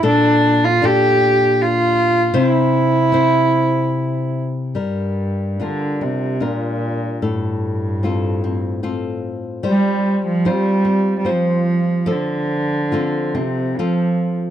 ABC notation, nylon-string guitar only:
X:1
M:3/4
L:1/8
Q:1/4=74
K:Gdor
V:1 name="Nylon-string guitar"
[B,,A]2 [DGA]4 | [C,c]2 [CEc]4 | [G,B]2 [DFB] D [DFB]2 | [A,,A]2 [CFA] C [CFA]2 |
[G,c]2 [CFc] C [CFc]2 | [F,A]2 [CFA] C [CFA]2 |]